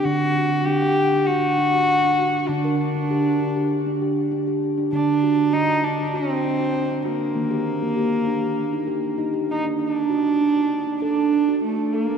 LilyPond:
<<
  \new Staff \with { instrumentName = "Cello" } { \time 4/4 \tempo 4 = 99 fis'4 g'4 fis'2 | d'8 d'2 r4. | d'4 ees'8 d'8 c'4. bes8~ | bes2.~ bes8 ees'8 |
d'2 d'4 a8 bes8 | }
  \new Staff \with { instrumentName = "Steel tongue drum" } { \time 4/4 d'8 fis'8 d'16 fis''8 d'16 fis'8 d'16 fis'8 d'16 fis'8 | d'16 bes'8 d'16 g'8 d'16 g'8 d'16 g'8 d'16 g'8 d'16 | d'8 fis'8 d'16 fis'8 d'16 fis'8 d'16 fis'8 d'16 fis'8 | bes16 g'8 bes16 g'8 d'16 g'8 ees'16 g'8 ees'16 g'8 d'16 |
d'8 fis'8 d'16 fis'8 d'16 a'8 d'16 fis'8 d'16 a'8 | }
  \new Staff \with { instrumentName = "Steel tongue drum" } { \clef bass \time 4/4 d1 | d1 | d1 | ees1 |
r1 | }
>>